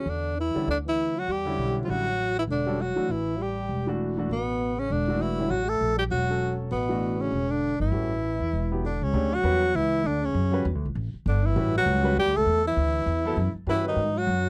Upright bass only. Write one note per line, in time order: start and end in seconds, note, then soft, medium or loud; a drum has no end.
0.06 0.51 E2 medium
0.55 muted upright bass stroke soft
0.67 1.24 D2 medium
1.28 1.56 E2 medium
1.57 1.85 B1 medium
1.88 2.45 A1 medium
2.48 2.93 E1 medium
2.96 muted upright bass stroke soft
3.09 3.66 A1 medium
3.69 4.27 E1 medium
4.29 4.87 A1 medium
4.90 5.48 E1 medium
5.51 5.79 A1 medium
5.81 6.09 A#1 medium
6.11 6.69 E1 medium
6.71 7.29 A1 medium
7.32 7.77 E1 medium
7.80 7.91 G1 medium
7.92 8.37 A1 medium
8.40 8.52 E2 medium
8.53 8.98 E1 medium
9.02 9.13 C#2 medium
9.13 9.43 D2 medium
9.43 9.73 E2 medium
9.75 10.04 C#2 medium
10.04 10.34 D2 medium
10.34 10.64 F#2 medium
10.65 10.75 E2 medium
10.75 10.85 D2 medium
10.85 10.95 C#2 medium
10.95 11.12 A1 medium
11.14 muted upright bass stroke soft
11.26 11.55 G1 medium
11.56 11.85 A1 medium
11.86 12.15 C#2 loud
12.16 12.27 E2 medium
12.27 12.36 D2 medium
12.36 12.45 C#2 medium
12.46 12.75 E2 medium
12.76 13.06 D2 medium
13.06 13.35 E2 medium
13.36 13.53 F#2 medium
13.55 muted upright bass stroke soft
13.67 13.96 G2 medium
13.96 14.26 G#2 medium
14.27 14.49 F#2 medium